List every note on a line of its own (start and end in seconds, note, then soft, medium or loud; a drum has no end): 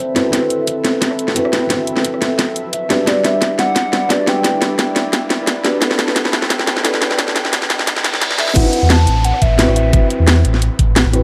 0.00 0.14 C4 medium
0.00 2.86 C4 medium
0.00 0.15 E4 medium
0.00 0.17 F#4 medium
0.00 2.86 A4 medium
0.00 0.17 B4 loud
0.00 2.86 B4 medium
0.00 0.25 C5 medium
0.00 5.78 E5 medium
0.00 riser medium
0.14 0.29 C4 medium
0.14 0.31 E4 medium
0.14 0.32 F#4 medium
0.14 0.32 B4 medium
0.14 cross-stick soft
0.14 snare medium
0.14 closed hi-hat medium
0.30 1.33 C4 medium
0.30 1.34 E4 medium
0.30 kick medium
0.30 snare medium
0.30 closed hi-hat medium
0.34 1.35 F#4 medium
0.34 1.36 B4 medium
0.50 closed hi-hat medium
0.67 kick medium
0.67 closed hi-hat medium
0.85 snare medium
0.85 closed hi-hat medium
1.02 kick loud
1.02 snare medium
1.02 closed hi-hat medium
1.11 cross-stick soft
1.19 closed hi-hat medium
1.28 snare medium
1.34 1.66 C4 medium
1.34 1.68 E4 medium
1.34 1.69 F#4 medium
1.34 1.69 B4 loud
1.34 kick loud
1.34 closed hi-hat medium
1.45 cross-stick medium
1.53 snare medium
1.53 closed hi-hat medium
1.67 2.87 C4 medium
1.67 2.88 E4 medium
1.67 kick medium
1.67 snare medium
1.67 closed hi-hat medium
1.71 2.88 F#4 medium
1.71 2.90 B4 medium
1.87 closed hi-hat medium
1.97 snare medium
2.05 kick loud
2.05 closed hi-hat medium
2.14 cross-stick soft
2.22 snare medium
2.22 closed hi-hat medium
2.39 kick loud
2.39 snare medium
2.39 closed hi-hat medium
2.56 closed hi-hat medium
2.73 3.09 E5 loud
2.73 kick loud
2.73 closed hi-hat medium
2.89 5.79 G3 medium
2.89 3.03 D4 medium
2.89 8.52 E4 medium
2.89 3.05 F#4 medium
2.89 3.06 G4 medium
2.89 3.06 B4 medium
2.89 5.79 D5 medium
2.89 cross-stick soft
2.89 snare medium
2.89 closed hi-hat medium
3.04 4.07 D4 medium
3.04 4.08 F#4 medium
3.04 3.26 D5 medium
3.04 kick loud
3.04 snare medium
3.04 closed hi-hat medium
3.08 4.09 G4 medium
3.08 4.10 B4 loud
3.25 3.59 E5 loud
3.25 snare medium
3.25 closed hi-hat medium
3.42 kick loud
3.42 snare medium
3.42 closed hi-hat medium
3.59 4.12 F#5 loud
3.59 snare medium
3.59 closed hi-hat medium
3.76 kick loud
3.76 snare medium
3.76 closed hi-hat medium
3.93 snare medium
3.93 closed hi-hat medium
4.09 4.40 D4 medium
4.09 4.42 F#4 medium
4.09 4.43 G4 medium
4.09 4.44 B4 loud
4.09 4.30 D5 loud
4.09 kick loud
4.09 snare medium
4.09 closed hi-hat medium
4.27 5.31 G5 loud
4.27 snare medium
4.27 closed hi-hat medium
4.42 5.61 D4 medium
4.42 5.62 E4 medium
4.42 kick loud
4.42 snare medium
4.42 closed hi-hat medium
4.46 5.63 G4 medium
4.46 5.64 B4 medium
4.62 snare medium
4.62 closed hi-hat medium
4.79 kick loud
4.79 snare medium
4.79 closed hi-hat medium
4.96 snare medium
4.96 closed hi-hat medium
5.13 kick loud
5.13 snare medium
5.13 closed hi-hat medium
5.30 snare medium
5.30 closed hi-hat medium
5.47 kick loud
5.47 snare medium
5.47 closed hi-hat medium
5.63 5.77 D4 medium
5.63 5.80 F#4 medium
5.63 5.80 G4 medium
5.63 5.81 B4 medium
5.63 snare medium
5.63 closed hi-hat medium
5.79 6.81 D4 medium
5.79 6.82 E4 medium
5.79 8.54 A4 medium
5.79 8.53 B4 medium
5.79 8.54 G5 medium
5.79 kick loud
5.79 snare medium
5.79 closed hi-hat medium
5.83 6.83 A4 medium
5.83 6.84 B4 loud
5.91 snare medium
5.99 snare medium
5.99 closed hi-hat medium
6.08 snare medium
6.16 kick loud
6.16 snare loud
6.16 closed hi-hat loud
6.25 snare medium
6.33 snare medium
6.33 closed hi-hat medium
6.42 snare medium
6.50 kick loud
6.50 snare medium
6.50 closed hi-hat medium
6.59 snare medium
6.67 snare medium
6.67 closed hi-hat medium
6.77 snare medium
6.83 7.14 D4 loud
6.83 7.16 E4 medium
6.83 7.17 A4 medium
6.83 7.18 B4 loud
6.83 kick loud
6.83 snare loud
6.83 closed hi-hat loud
6.94 snare medium
7.02 snare loud
7.02 closed hi-hat medium
7.11 snare medium
7.16 8.35 D4 medium
7.16 8.36 E4 medium
7.16 kick loud
7.16 snare loud
7.16 closed hi-hat loud
7.20 8.37 A4 medium
7.20 8.39 B4 medium
7.28 snare medium
7.36 snare loud
7.36 closed hi-hat medium
7.45 snare medium
7.53 kick loud
7.53 snare loud
7.53 closed hi-hat loud
7.62 snare medium
7.70 snare loud
7.70 closed hi-hat medium
7.79 snare medium
7.87 kick loud
7.87 snare loud
7.87 closed hi-hat loud
7.87 reverse cymbal medium
7.97 snare loud
8.04 snare loud
8.04 closed hi-hat medium
8.14 snare medium
8.22 kick loud
8.22 snare loud
8.22 closed hi-hat loud
8.31 snare loud
8.37 8.53 D4 medium
8.37 8.53 E4 medium
8.37 8.54 A4 medium
8.37 8.55 B4 medium
8.37 8.58 E5 loud
8.37 snare loud
8.37 closed hi-hat medium
8.48 snare loud
8.53 8.64 A1 loud
8.53 9.55 C4 medium
8.53 9.56 E4 medium
8.53 8.92 F#5 loud
8.53 kick loud
8.53 closed hi-hat loud
8.53 crash loud
8.53 downlifter medium
8.57 9.57 F#4 medium
8.57 9.59 B4 loud
8.73 closed hi-hat medium
8.82 9.06 E2 loud
8.90 9.26 A5 loud
8.90 snare loud
8.90 closed hi-hat loud
9.07 9.32 A1 medium
9.07 closed hi-hat medium
9.24 9.43 F#5 loud
9.24 closed hi-hat loud
9.34 cross-stick soft
9.42 9.67 A1 medium
9.42 9.75 E5 loud
9.42 kick loud
9.42 closed hi-hat medium
9.57 9.88 C4 loud
9.57 9.91 E4 medium
9.57 9.92 F#4 medium
9.57 9.92 B4 loud
9.57 snare loud
9.57 closed hi-hat loud
9.68 9.92 A1 medium
9.68 cross-stick medium
9.76 10.08 E5 medium
9.76 closed hi-hat medium
9.90 10.02 A1 loud
9.90 11.10 C4 medium
9.90 11.11 E4 medium
9.90 kick loud
9.90 closed hi-hat medium
9.94 11.12 F#4 medium
9.94 11.13 B4 medium
10.10 closed hi-hat medium
10.20 10.43 E2 medium
10.28 snare loud
10.28 closed hi-hat loud
10.37 cross-stick soft
10.45 10.70 A1 medium
10.45 closed hi-hat medium
10.54 snare soft
10.62 closed hi-hat medium
10.79 11.04 A1 medium
10.79 kick loud
10.79 closed hi-hat medium
10.96 snare loud
10.96 closed hi-hat loud
11.06 11.23 A1 medium
11.12 11.23 C4 medium
11.12 11.23 E4 medium
11.12 11.23 F#4 medium
11.12 11.23 B4 medium
11.12 cross-stick soft
11.12 closed hi-hat medium